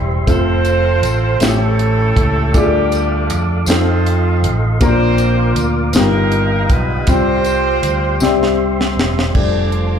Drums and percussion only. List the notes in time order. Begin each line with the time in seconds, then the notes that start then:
0.27 kick, closed hi-hat, tambourine
0.65 closed hi-hat, tambourine
1.03 closed hi-hat, tambourine
1.40 snare, closed hi-hat, tambourine
1.79 closed hi-hat
2.17 kick, closed hi-hat
2.54 kick, closed hi-hat, tambourine
2.92 closed hi-hat, tambourine
3.30 closed hi-hat, tambourine
3.66 snare, closed hi-hat, tambourine
4.07 closed hi-hat
4.44 closed hi-hat
4.81 kick, closed hi-hat, tambourine
5.18 closed hi-hat, tambourine
5.56 closed hi-hat, tambourine
5.93 snare, closed hi-hat, tambourine
6.32 closed hi-hat
6.70 kick, closed hi-hat
7.07 kick, closed hi-hat, tambourine
7.45 closed hi-hat, tambourine
7.83 closed hi-hat, tambourine
8.20 snare, tambourine
8.43 snare
8.81 snare
8.99 snare
9.19 snare
9.35 kick, crash
9.72 closed hi-hat